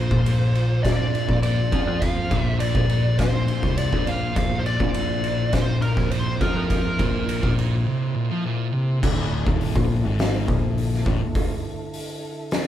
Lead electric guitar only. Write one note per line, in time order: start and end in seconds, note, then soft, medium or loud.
0.00 0.83 C5 medium
0.83 1.38 D5 loud
1.43 2.03 D5 medium
2.01 2.41 F5 loud
2.41 2.56 E5 loud
2.60 3.19 D5 loud
3.19 3.78 C5 medium
3.78 4.08 D5 medium
4.08 4.36 F5 medium
4.37 4.59 F5 medium
4.59 4.66 C5 medium
4.67 5.56 D5 loud
5.53 5.82 C5 medium
5.82 6.11 A#4 medium
6.12 6.41 C5 medium
6.42 7.54 A#4 medium